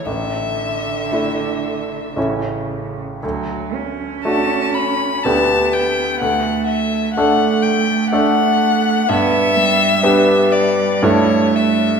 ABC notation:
X:1
M:3/4
L:1/8
Q:1/4=60
K:D
V:1 name="Violin"
e4 z2 | z2 a b a g | f e f g f2 | e3 d c e |]
V:2 name="Grand piano"
A,,,2 [A,DE]2 [A,,,A,CE]2 | D,,2 [A,DF]2 [D,,B,DG]2 | D,,2 [A,DA]2 [A,DA]2 | G,,2 [B,DG]2 [G,,A,EA]2 |]
V:3 name="Cello"
D,4 C,2 | F, C3 B,2 | A,2 A,4 | B, G, G,2 A,2 |]